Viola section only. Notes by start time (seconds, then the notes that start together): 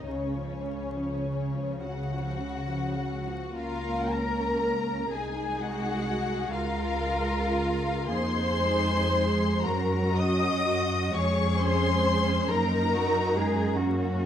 0.09 C#3 C#4
0.37 F3
0.65 C#3
0.94 F3
1.24 C#3
1.55 F3
1.85 C#3
2.12 F3
2.40 C#3
2.68 F3
2.97 C#3
3.26 F3
3.55 A#3 C#4
5.12 G#3 D#4
6.52 G#3 F4
8.10 A#3 D#4
8.61 G#3
9.11 G#3
9.64 F#3 C#4
11.14 G#3 C#4
12.52 A#3 D#4
12.96 F#3
13.38 G#3
13.80 A#3 C#4